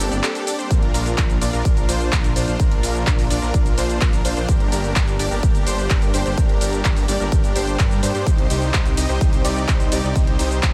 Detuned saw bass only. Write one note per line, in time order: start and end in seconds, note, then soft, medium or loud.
0.11 0.21 G1 medium
0.71 0.92 A#1 medium
0.94 1.15 A#1 loud
1.18 1.39 A#1 loud
1.41 1.51 A#1 medium
1.53 1.63 A#1 loud
1.65 1.86 A#1 loud
1.89 2.10 A#1 loud
2.12 2.34 A#1 loud
2.36 2.45 A#1 loud
2.48 2.57 A#1 loud
2.60 2.81 A#1 loud
2.83 3.04 A#1 loud
3.07 3.28 A#1 loud
3.30 3.40 A#1 medium
3.42 3.52 A#1 loud
3.54 3.75 A#1 medium
3.78 3.99 A#1 loud
4.01 4.23 A#1 loud
4.25 4.34 A#1 loud
4.37 4.46 A#1 loud
4.49 4.70 G1 medium
4.72 4.93 G1 medium
4.96 5.17 G1 loud
5.19 5.29 G1 loud
5.31 5.41 G1 loud
5.43 5.64 G1 loud
5.67 5.88 G1 loud
5.90 6.12 G1 loud
6.14 6.23 G1 loud
6.26 6.35 G1 loud
6.38 6.59 G1 loud
6.61 6.82 G1 loud
6.85 7.06 G1 loud
7.08 7.18 G1 loud
7.20 7.30 G1 loud
7.32 7.53 G1 loud
7.56 7.77 G1 loud
7.79 8.01 G2 loud
8.03 8.12 G2 medium
8.15 8.24 G2 loud
8.27 8.48 C2 loud
8.50 8.71 C2 loud
8.74 8.95 C2 loud
8.97 9.07 C2 loud
9.09 9.19 C2 loud
9.21 9.42 C2 loud
9.45 9.66 C2 medium
9.68 9.90 C2 loud
9.92 10.01 C2 medium
10.04 10.13 C2 loud
10.16 10.37 C2 loud
10.39 10.60 C2 loud
10.63 10.73 C2 loud